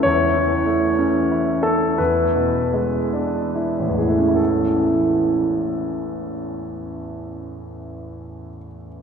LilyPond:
<<
  \new Staff \with { instrumentName = "Grand piano" } { \time 6/8 \key a \major \tempo 4. = 26 cis''4~ cis''16 a'16 b'4. | <a,, e, e a cis' e' a'>2. | }
  \new Staff \with { instrumentName = "Grand piano" } { \time 6/8 \key a \major e,16 e16 a16 cis'16 e'16 cis'16 e,16 b,16 gis16 d'16 e'16 gis'16 | r2. | }
>>